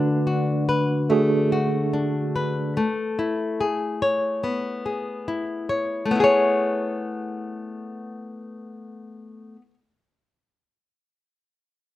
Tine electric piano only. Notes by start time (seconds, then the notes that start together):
Already playing: A3 D4 F#4 B4
1.10 A3 D4 F#4 G#4